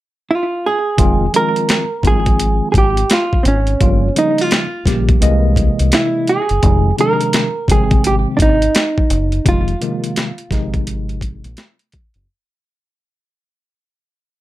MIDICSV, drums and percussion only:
0, 0, Header, 1, 2, 480
1, 0, Start_track
1, 0, Key_signature, -4, "minor"
1, 0, Tempo, 705882
1, 669, Time_signature, 4, 2, 24, 8
1, 9794, End_track
2, 0, Start_track
2, 0, Title_t, "Drums"
2, 668, Note_on_c, 9, 36, 102
2, 669, Note_on_c, 9, 42, 63
2, 736, Note_off_c, 9, 36, 0
2, 737, Note_off_c, 9, 42, 0
2, 911, Note_on_c, 9, 42, 74
2, 979, Note_off_c, 9, 42, 0
2, 1062, Note_on_c, 9, 42, 50
2, 1130, Note_off_c, 9, 42, 0
2, 1148, Note_on_c, 9, 42, 79
2, 1155, Note_on_c, 9, 38, 104
2, 1216, Note_off_c, 9, 42, 0
2, 1223, Note_off_c, 9, 38, 0
2, 1382, Note_on_c, 9, 36, 84
2, 1391, Note_on_c, 9, 42, 66
2, 1450, Note_off_c, 9, 36, 0
2, 1459, Note_off_c, 9, 42, 0
2, 1538, Note_on_c, 9, 42, 38
2, 1539, Note_on_c, 9, 36, 88
2, 1606, Note_off_c, 9, 42, 0
2, 1607, Note_off_c, 9, 36, 0
2, 1629, Note_on_c, 9, 42, 81
2, 1697, Note_off_c, 9, 42, 0
2, 1863, Note_on_c, 9, 36, 77
2, 1870, Note_on_c, 9, 42, 66
2, 1931, Note_off_c, 9, 36, 0
2, 1938, Note_off_c, 9, 42, 0
2, 2021, Note_on_c, 9, 42, 49
2, 2089, Note_off_c, 9, 42, 0
2, 2106, Note_on_c, 9, 42, 80
2, 2114, Note_on_c, 9, 38, 101
2, 2174, Note_off_c, 9, 42, 0
2, 2182, Note_off_c, 9, 38, 0
2, 2263, Note_on_c, 9, 36, 76
2, 2331, Note_off_c, 9, 36, 0
2, 2348, Note_on_c, 9, 42, 64
2, 2416, Note_off_c, 9, 42, 0
2, 2494, Note_on_c, 9, 42, 38
2, 2562, Note_off_c, 9, 42, 0
2, 2588, Note_on_c, 9, 36, 95
2, 2588, Note_on_c, 9, 42, 68
2, 2656, Note_off_c, 9, 36, 0
2, 2656, Note_off_c, 9, 42, 0
2, 2831, Note_on_c, 9, 42, 72
2, 2899, Note_off_c, 9, 42, 0
2, 2981, Note_on_c, 9, 42, 50
2, 3049, Note_off_c, 9, 42, 0
2, 3066, Note_on_c, 9, 42, 83
2, 3074, Note_on_c, 9, 38, 102
2, 3134, Note_off_c, 9, 42, 0
2, 3142, Note_off_c, 9, 38, 0
2, 3302, Note_on_c, 9, 36, 82
2, 3311, Note_on_c, 9, 38, 32
2, 3311, Note_on_c, 9, 42, 66
2, 3370, Note_off_c, 9, 36, 0
2, 3379, Note_off_c, 9, 38, 0
2, 3379, Note_off_c, 9, 42, 0
2, 3459, Note_on_c, 9, 36, 94
2, 3459, Note_on_c, 9, 42, 38
2, 3527, Note_off_c, 9, 36, 0
2, 3527, Note_off_c, 9, 42, 0
2, 3548, Note_on_c, 9, 42, 78
2, 3616, Note_off_c, 9, 42, 0
2, 3782, Note_on_c, 9, 36, 78
2, 3789, Note_on_c, 9, 42, 65
2, 3850, Note_off_c, 9, 36, 0
2, 3857, Note_off_c, 9, 42, 0
2, 3940, Note_on_c, 9, 42, 46
2, 4008, Note_off_c, 9, 42, 0
2, 4024, Note_on_c, 9, 42, 86
2, 4032, Note_on_c, 9, 38, 102
2, 4092, Note_off_c, 9, 42, 0
2, 4100, Note_off_c, 9, 38, 0
2, 4267, Note_on_c, 9, 42, 66
2, 4335, Note_off_c, 9, 42, 0
2, 4414, Note_on_c, 9, 42, 38
2, 4482, Note_off_c, 9, 42, 0
2, 4506, Note_on_c, 9, 42, 61
2, 4507, Note_on_c, 9, 36, 103
2, 4574, Note_off_c, 9, 42, 0
2, 4575, Note_off_c, 9, 36, 0
2, 4750, Note_on_c, 9, 42, 71
2, 4818, Note_off_c, 9, 42, 0
2, 4900, Note_on_c, 9, 42, 50
2, 4968, Note_off_c, 9, 42, 0
2, 4985, Note_on_c, 9, 42, 82
2, 4993, Note_on_c, 9, 38, 98
2, 5053, Note_off_c, 9, 42, 0
2, 5061, Note_off_c, 9, 38, 0
2, 5223, Note_on_c, 9, 36, 78
2, 5233, Note_on_c, 9, 42, 70
2, 5291, Note_off_c, 9, 36, 0
2, 5301, Note_off_c, 9, 42, 0
2, 5378, Note_on_c, 9, 42, 41
2, 5380, Note_on_c, 9, 36, 93
2, 5446, Note_off_c, 9, 42, 0
2, 5448, Note_off_c, 9, 36, 0
2, 5469, Note_on_c, 9, 42, 86
2, 5537, Note_off_c, 9, 42, 0
2, 5704, Note_on_c, 9, 36, 83
2, 5711, Note_on_c, 9, 42, 68
2, 5772, Note_off_c, 9, 36, 0
2, 5779, Note_off_c, 9, 42, 0
2, 5862, Note_on_c, 9, 42, 47
2, 5930, Note_off_c, 9, 42, 0
2, 5948, Note_on_c, 9, 42, 94
2, 5956, Note_on_c, 9, 38, 106
2, 6016, Note_off_c, 9, 42, 0
2, 6024, Note_off_c, 9, 38, 0
2, 6104, Note_on_c, 9, 36, 74
2, 6172, Note_off_c, 9, 36, 0
2, 6190, Note_on_c, 9, 42, 65
2, 6258, Note_off_c, 9, 42, 0
2, 6338, Note_on_c, 9, 42, 36
2, 6406, Note_off_c, 9, 42, 0
2, 6431, Note_on_c, 9, 36, 100
2, 6432, Note_on_c, 9, 42, 69
2, 6499, Note_off_c, 9, 36, 0
2, 6500, Note_off_c, 9, 42, 0
2, 6581, Note_on_c, 9, 42, 33
2, 6649, Note_off_c, 9, 42, 0
2, 6675, Note_on_c, 9, 42, 76
2, 6743, Note_off_c, 9, 42, 0
2, 6825, Note_on_c, 9, 42, 50
2, 6893, Note_off_c, 9, 42, 0
2, 6911, Note_on_c, 9, 42, 81
2, 6919, Note_on_c, 9, 38, 94
2, 6979, Note_off_c, 9, 42, 0
2, 6987, Note_off_c, 9, 38, 0
2, 7059, Note_on_c, 9, 42, 32
2, 7127, Note_off_c, 9, 42, 0
2, 7145, Note_on_c, 9, 36, 88
2, 7154, Note_on_c, 9, 38, 31
2, 7155, Note_on_c, 9, 42, 64
2, 7213, Note_off_c, 9, 36, 0
2, 7222, Note_off_c, 9, 38, 0
2, 7223, Note_off_c, 9, 42, 0
2, 7301, Note_on_c, 9, 36, 88
2, 7301, Note_on_c, 9, 42, 37
2, 7369, Note_off_c, 9, 36, 0
2, 7369, Note_off_c, 9, 42, 0
2, 7391, Note_on_c, 9, 42, 85
2, 7459, Note_off_c, 9, 42, 0
2, 7543, Note_on_c, 9, 42, 31
2, 7611, Note_off_c, 9, 42, 0
2, 7624, Note_on_c, 9, 36, 79
2, 7632, Note_on_c, 9, 42, 66
2, 7692, Note_off_c, 9, 36, 0
2, 7700, Note_off_c, 9, 42, 0
2, 7782, Note_on_c, 9, 42, 45
2, 7850, Note_off_c, 9, 42, 0
2, 7867, Note_on_c, 9, 42, 89
2, 7874, Note_on_c, 9, 38, 107
2, 7935, Note_off_c, 9, 42, 0
2, 7942, Note_off_c, 9, 38, 0
2, 8019, Note_on_c, 9, 42, 30
2, 8087, Note_off_c, 9, 42, 0
2, 8108, Note_on_c, 9, 42, 68
2, 8116, Note_on_c, 9, 36, 87
2, 8176, Note_off_c, 9, 42, 0
2, 8184, Note_off_c, 9, 36, 0
2, 8256, Note_on_c, 9, 42, 38
2, 8324, Note_off_c, 9, 42, 0
2, 9794, End_track
0, 0, End_of_file